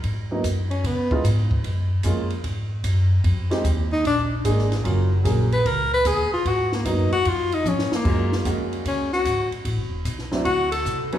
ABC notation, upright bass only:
X:1
M:4/4
L:1/8
Q:"Swing" 1/4=150
K:Ebm
V:1 name="Upright bass" clef=bass
A,,2 G,,2 D,2 A,,2 | G,,2 F,,2 A,,2 G,,2 | F,,2 E,,2 B,,,2 A,,,2 | G,,,2 B,,,2 D,,2 E,, z |
A,,2 G,, z F,,2 A,, z | [K:F#] F,,2 E,,2 C,,2 G,,, z | (3=A,,, =G,,, =E,,, B,,,2 =D,,2 =C,, z |]